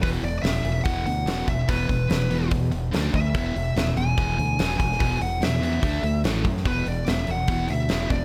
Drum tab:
HH |o-o-o-o-o-o-o-o-|o-o-o-o-o-o-o-o-|o-o-o-o-o-o-o-o-|o-o-o-o-o-o-o-o-|
SD |----o-------o---|----o-------o---|----o-------o--o|----o-------o--o|
BD |o-------o-----o-|o-o-----o-----o-|o-------o-----o-|o-------o-----o-|

HH |o-o-o-o-o-o-o-o-|
SD |----o-------o---|
BD |o-------o-----o-|